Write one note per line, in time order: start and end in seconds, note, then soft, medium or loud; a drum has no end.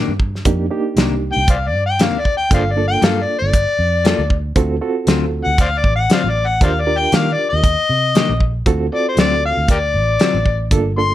0.00 0.11 C3 medium
0.00 0.11 D#3 medium
0.00 0.12 A#3 medium
0.00 0.12 D4 loud
0.08 0.41 G2 medium
0.20 kick medium
0.35 snare soft
0.45 0.68 F2 loud
0.45 0.65 A#3 medium
0.45 0.65 D4 medium
0.45 0.65 D#4 medium
0.45 0.65 G4 medium
0.45 kick loud
0.45 closed hi-hat medium
0.70 1.45 A#3 medium
0.70 1.45 D4 medium
0.70 1.45 D#4 medium
0.70 1.45 G4 medium
0.96 1.31 C2 medium
0.96 1.14 C3 medium
0.96 1.14 D#3 medium
0.96 1.14 A#3 medium
0.96 1.14 D4 loud
0.96 snare loud
0.96 closed hi-hat medium
1.33 1.74 C2 medium
1.33 1.49 G5 loud
1.48 1.56 C5 medium
1.48 1.57 D5 medium
1.48 1.69 F5 medium
1.48 kick loud
1.48 closed hi-hat medium
1.67 1.83 D5 medium
1.74 2.13 G2 medium
1.86 2.04 G5 medium
1.99 2.16 C3 medium
1.99 2.16 D#3 medium
1.99 2.17 A#3 medium
1.99 2.17 D4 medium
1.99 2.21 F5 medium
1.99 snare loud
1.99 closed hi-hat medium
2.13 2.52 D2 medium
2.20 2.35 D5 medium
2.25 kick medium
2.37 2.52 G5 loud
2.50 2.95 G1 loud
2.50 2.70 A#3 medium
2.50 2.70 D4 medium
2.50 2.70 F4 medium
2.50 2.70 A4 medium
2.50 2.63 C5 medium
2.50 2.62 D5 medium
2.50 2.73 F5 medium
2.50 kick loud
2.50 closed hi-hat medium
2.72 2.87 D5 medium
2.77 3.50 A#3 medium
2.77 3.51 D4 medium
2.77 3.51 F4 medium
2.77 3.51 A4 medium
2.88 3.06 G5 loud
3.01 3.25 G2 medium
3.01 3.18 G3 medium
3.01 3.19 A#3 medium
3.01 3.19 F4 medium
3.01 3.19 A4 loud
3.01 3.24 F5 medium
3.01 snare loud
3.01 closed hi-hat soft
3.22 3.38 D5 medium
3.39 3.64 G1 medium
3.39 4.37 D5 loud
3.53 kick loud
3.53 closed hi-hat medium
3.79 4.13 F2 medium
4.04 4.21 G3 medium
4.04 4.22 A#3 medium
4.04 4.22 F4 medium
4.04 4.22 A4 medium
4.04 snare loud
4.04 closed hi-hat medium
4.18 4.51 D2 medium
4.30 kick medium
4.56 4.78 D2 loud
4.56 4.75 C4 medium
4.56 4.75 F4 medium
4.56 4.75 F#4 medium
4.56 4.76 A4 medium
4.56 kick loud
4.56 closed hi-hat medium
4.81 5.55 C4 medium
4.81 5.56 F4 medium
4.81 5.55 F#4 medium
4.81 5.56 A4 medium
5.07 5.42 D2 medium
5.07 5.24 D3 loud
5.07 5.24 F#3 medium
5.07 5.24 C4 loud
5.07 5.25 F4 loud
5.07 snare loud
5.07 closed hi-hat medium
5.44 5.85 D2 medium
5.44 5.60 F#5 loud
5.58 5.68 C5 medium
5.58 5.68 D5 medium
5.58 5.80 F5 loud
5.58 kick loud
5.58 closed hi-hat medium
5.78 5.94 D5 medium
5.84 6.06 A1 medium
5.84 kick medium
5.96 6.11 F#5 medium
6.09 6.26 D3 medium
6.09 6.27 F#3 medium
6.09 6.27 C4 medium
6.09 6.27 F4 medium
6.09 6.21 C5 medium
6.09 6.21 D5 medium
6.09 6.31 F5 loud
6.09 snare loud
6.09 closed hi-hat medium
6.24 6.61 A1 medium
6.30 6.48 D5 medium
6.47 6.62 F#5 loud
6.61 7.05 D#2 loud
6.61 6.80 D4 medium
6.61 6.80 F4 medium
6.61 6.81 G4 medium
6.61 6.81 A#4 medium
6.61 6.71 C5 medium
6.61 6.69 D5 medium
6.61 6.82 F5 medium
6.61 kick loud
6.61 closed hi-hat medium
6.80 6.99 D5 loud
6.87 7.61 D4 medium
6.87 7.61 F4 medium
6.87 7.61 G4 medium
6.87 7.61 A#4 medium
6.98 7.17 G5 loud
7.12 7.29 D#3 medium
7.12 7.35 D#3 medium
7.12 7.29 G3 medium
7.12 7.29 A#3 loud
7.12 7.30 D4 medium
7.12 7.34 F5 loud
7.12 snare loud
7.12 closed hi-hat medium
7.33 7.48 D5 medium
7.50 7.75 D#2 medium
7.50 8.48 D#5 loud
7.64 kick loud
7.64 closed hi-hat medium
7.89 8.24 C3 medium
8.15 8.32 D#3 loud
8.15 8.32 G3 medium
8.15 8.32 A#3 loud
8.15 8.32 D4 medium
8.15 snare loud
8.15 closed hi-hat medium
8.29 8.61 A#1 medium
8.40 kick medium
8.66 8.88 D2 loud
8.66 8.86 C4 medium
8.66 8.85 F4 medium
8.66 8.86 F#4 medium
8.66 8.86 A4 medium
8.66 kick loud
8.66 closed hi-hat medium
8.92 9.66 C4 medium
8.92 9.66 F4 medium
8.92 9.66 F#4 medium
8.92 9.66 A4 medium
8.92 9.07 D5 loud
9.08 9.18 C5 medium
9.17 9.52 D2 medium
9.17 9.34 D3 medium
9.17 9.34 F#3 loud
9.17 9.35 C4 medium
9.17 9.35 F4 medium
9.17 9.43 D5 loud
9.17 snare loud
9.17 closed hi-hat medium
9.45 9.69 F5 loud
9.57 9.96 D2 medium
9.68 9.78 G4 medium
9.68 9.77 A#4 medium
9.68 10.69 D5 loud
9.68 kick loud
9.68 closed hi-hat medium
9.94 10.16 A1 medium
10.19 10.36 D3 medium
10.19 10.37 F#3 medium
10.19 10.37 C4 medium
10.19 10.37 F4 medium
10.19 snare loud
10.19 closed hi-hat medium
10.34 10.72 A1 medium
10.46 kick medium
10.71 11.14 G1 loud
10.71 10.90 A#3 medium
10.71 10.90 D4 medium
10.71 10.91 F4 medium
10.71 10.91 A4 loud
10.71 kick loud
10.71 closed hi-hat medium
10.97 11.14 A#3 medium
10.97 11.14 D4 medium
10.97 11.14 F4 medium
10.97 11.14 A4 medium
10.97 11.14 C6 loud